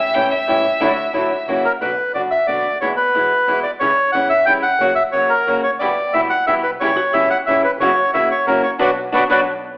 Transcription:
Already playing: E5
0.14 E1 E3 G3 A3 C#4 E4 G4 G5
0.30 E5
0.47 A1 E3 G3 A3 C#4 E4 G4
0.80 D2 D3 F#3 A3 D4 E4 F#4
1.13 A1 D3 F#3 A3 D4 E4 F#4
1.47 F#1 C#3 E3 A#3 C#4 E4 F#4
1.65 A#4
1.81 B1 B2 D3 B3 D4 F#4 B4
2.14 F#1 B2 D3 B3 D4 F#4 D5
2.31 E5
2.47 B1 B2 D3 B3 D4 F#4 D5
2.64 D2
2.81 E2 B2 E3 G#3 B3 E4 C#5
2.97 B4
3.14 B1 B2 E3 G#3 B3 E4
3.47 E2 B2 E3 G#3 B3 E4
3.63 D5
3.80 C#2 C#3 E3 G3 C#4 E4 C#5
4.12 G1 C#3 E3 G3 C#4 E4 F#5
4.29 E5
4.46 C#2 C#3 E3 G3 C#4 E4 G5
4.63 F#5
4.80 F#1 C#3 F#3 A#3 C#4 F#4
4.95 E5
5.12 C#2 C#3 F#3 A#3 C#4 F#4 C#5
5.29 A#4
5.47 F#1 C#3 F#3 A#3 C#4 F#4
5.63 D2 C#5
5.79 E2 B2 E3 G3 B3 E4 G4 D5
6.13 B1 B2 E3 G3 B3 E4 G4 E5
6.30 F#5
6.47 E2 B2 E3 G3 B3 E4 G4 E5
6.63 B1 B4
6.80 C#2 C#3 E3 G3 C#4 E4 G4 C#5
6.97 F#4
7.13 G1 C#3 E3 G3 C#4 E4 G4 E5
7.30 E4 F#5
7.46 C#2 C#3 E3 G3 C#4 E4 G4 E5
7.64 B4
7.79 F#1 C#3 E3 A#3 C#4 E4 F#4 C#5
8.13 C#2 C#3 E3 A#3 C#4 E4 F#4 E5
8.31 C#5
8.46 F#1 C#3 E3 A#3 C#4 E4 F#4 A#4
8.63 C#5
8.79 B1 F#3 B3 D4 F#4 B4 D5
9.12 B1 F#3 B3 D4 F#4 B4 D5
9.29 B1 F#3 B3 D4 F#4 B4 D5

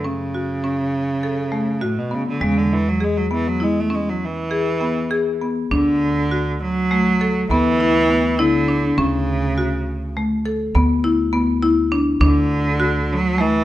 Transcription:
Already playing: F#2
0.04 C#3 C#4
0.35 F#4
0.64 C#4
1.23 A4
1.52 A3
1.81 A2 F#4
1.98 B2
2.11 C#3 B3
2.28 D3
2.41 E2 C#3 G#3
2.58 D3
2.73 E3
2.88 F#3
3.00 G#3 G#4
3.17 F#3
3.31 E3 B3
3.48 F#3
3.60 G#3 E4
3.80 A3
3.90 C#4
3.95 G#3
4.09 F#3
4.25 E3
4.51 G#4
4.81 B3
5.11 G#4
5.41 B3
5.71 D2 D3 D4
6.31 F#4
6.62 F#3
6.91 A3
7.21 A4
7.50 D2 E3 B3
7.80 E4
8.10 B3
8.39 D3 E4
8.68 D4
8.97 D2 C#3 C#4
9.58 F#4
10.17 A3
10.46 A4
10.75 D2 B3
11.04 E4
11.33 B3
11.63 E4
11.92 D4
12.20 D2 D3 D4
12.80 F#4
13.12 F#3
13.38 E3 A3

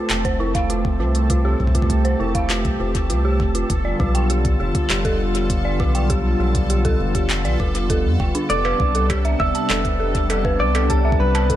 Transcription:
Already playing: A3 C4 A4 A5
0.10 F1, clap, closed hi-hat
0.25 C5, kick, closed hi-hat
0.40 E4
0.55 F5, kick, closed hi-hat
0.70 F4, closed hi-hat
0.85 kick
1.00 C2 F4
1.15 closed hi-hat
1.30 F4 G4, kick, closed hi-hat
1.45 G4
1.60 C2, kick
1.67 kick
1.75 F4, kick, closed hi-hat
1.82 kick
1.90 kick, closed hi-hat
2.05 C5, closed hi-hat
2.20 F1 E4
2.35 F5, kick, closed hi-hat
2.50 F4, clap, closed hi-hat
2.65 C2, kick, closed hi-hat
2.80 F1 F4
2.95 kick, closed hi-hat
3.10 C2 F4, closed hi-hat
3.25 G4
3.40 F1, kick
3.55 F4, closed hi-hat
3.70 F1 D3 G3 B3 F4, kick, closed hi-hat
3.85 D5
4.00 B1 F4, kick
4.15 G5, closed hi-hat
4.30 G4, closed hi-hat
4.45 kick, closed hi-hat
4.60 F1 G4
4.75 kick, closed hi-hat
4.90 F1 G4, clap, closed hi-hat
5.05 A4, kick, closed hi-hat
5.35 G4, closed hi-hat
5.50 kick, closed hi-hat
5.65 D5
5.80 B1 F4, kick
5.95 G5, closed hi-hat
6.10 G4, kick, closed hi-hat
6.40 B1 G4
6.55 kick, closed hi-hat
6.70 G4, closed hi-hat
6.85 A4, kick, closed hi-hat
7.00 F1
7.15 G4, kick, closed hi-hat
7.30 clap, closed hi-hat
7.45 B1 D5, closed hi-hat
7.60 F1 F4, kick
7.75 F4, closed hi-hat
7.90 A4, kick, closed hi-hat
8.05 F2
8.20 F1 G5, kick
8.35 D4, closed hi-hat
8.50 F1 C3 G3 D4 A4 D5, closed hi-hat
8.65 B4, struck metal
8.80 C2, kick
8.95 A4, closed hi-hat
9.10 G4, kick, closed hi-hat, struck metal
9.25 E5, closed hi-hat
9.40 F1 E5, kick
9.55 A5, closed hi-hat
9.70 F1 A4, clap, closed hi-hat, struck metal
9.85 kick, closed hi-hat
10.00 A4
10.15 kick, closed hi-hat
10.30 A4, closed hi-hat, struck metal
10.45 B4, kick
10.60 C2 D5
10.75 A4, closed hi-hat, struck metal
10.90 G4 A4, kick, closed hi-hat
11.05 E5
11.12 kick
11.20 C2 B4
11.35 A5, closed hi-hat, struck metal
11.50 A4, kick, closed hi-hat

